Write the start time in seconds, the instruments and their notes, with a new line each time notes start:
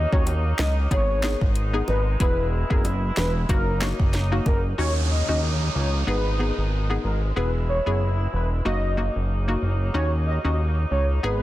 Already playing: woodwind section C#3 F#3 A#3 D#4
0.12 analog synth bass D#2, synth pluck C#4 D#4 F#4, soft synth lead C#5, kick
0.27 closed hi-hat, high bongo
0.59 analog synth bass C#2, soft synth lead D#5, snare, clap, high bongo, low bongo
0.91 analog synth bass G#1, synth pluck B3 D#4 G#4, soft synth lead C#5, kick, closed hi-hat
1.23 synth pluck B3 D#4 G#4, snare, clap
1.41 analog synth bass G#1, kick
1.56 closed hi-hat
1.73 synth pluck B3 D#4 G#4
1.88 analog synth bass G#1, soft synth lead B4, high bongo, low bongo
2.20 analog synth bass E1, woodwind section E3 E4, synth pluck B3 E4 G#4, soft synth lead B4, kick, closed hi-hat
2.70 analog synth bass F#1, synth pluck B3 E4 G#4, soft synth lead A#4, kick
2.85 closed hi-hat, high bongo
3.17 analog synth bass E1, soft synth lead B4, snare, clap, high bongo, low bongo
3.49 analog synth bass F#1, woodwind section C#3 F#3 D#4, synth pluck A#3 D#4 F#4, soft synth lead A#4, kick, closed hi-hat
3.81 synth pluck A#3 D#4 F#4, snare, clap
4.00 analog synth bass F#1, kick
4.14 snare, closed hi-hat
4.32 synth pluck A#3 D#4 F#4
4.46 analog synth bass F#1, soft synth lead A#4, kick, high bongo, low bongo
4.78 analog synth bass D#2, woodwind section C#3 F#3 A#3 D#4, synth pluck C#4 D#4 F#4, soft synth lead C#5, downlifter
5.11 soft synth lead D#5
5.28 analog synth bass D#2, synth pluck C#4 D#4 F#4, soft synth lead D#5
5.75 analog synth bass C#2, soft synth lead C#5
6.07 analog synth bass G#1, woodwind section B2 D#3 G#3, synth pluck B3 D#4 G#4, soft synth lead B4
6.39 synth pluck B3 D#4 G#4
6.58 analog synth bass G#1
6.90 synth pluck B3 D#4 G#4
7.04 analog synth bass G#1, soft synth lead A#4
7.36 analog synth bass E1, woodwind section E3 E4, synth pluck B3 E4 G#4, soft synth lead B4
7.69 soft synth lead C#5
7.86 analog synth bass F#1, synth pluck B3 E4 G#4, soft synth lead C#5
8.33 analog synth bass E1, soft synth lead B4
8.65 analog synth bass F#1, woodwind section C#3 F#3 A#3 D#4, synth pluck A#3 D#4 F#4, soft synth lead D#5
8.97 synth pluck A#3 D#4 F#4
9.16 analog synth bass F#1
9.48 synth pluck A#3 D#4 F#4
9.62 analog synth bass F#1
9.94 analog synth bass D#2, synth pluck C#4 D#4 F#4, soft synth lead C#5
10.27 soft synth lead D#5
10.44 analog synth bass D#2, synth pluck C#4 D#4 F#4, soft synth lead D#5
10.91 analog synth bass C#2, soft synth lead C#5
11.23 analog synth bass G#1, woodwind section B2 D#3 G#3, synth pluck B3 D#4 G#4, soft synth lead B4